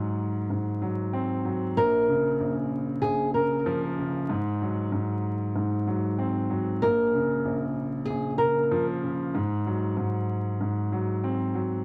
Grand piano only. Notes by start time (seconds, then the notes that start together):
Already playing: G#2 F#3
0.50 G#2
0.82 F#3
1.13 C4
1.45 F#3
1.77 A#1
2.08 C#3
2.40 A#1
3.04 A#1
3.35 C#3
3.66 F3
3.99 C#3
4.29 G#2
4.62 F#3
4.92 G#2
5.56 G#2
5.87 F#3
6.19 C4
6.50 F#3
6.82 A#1
7.14 C#3
7.45 A#1
8.10 A#1
8.41 C#3
8.71 F3
9.04 C#3
9.35 G#2
9.66 F#3
9.97 G#2
10.61 G#2
10.92 F#3
11.24 C4
11.55 F#3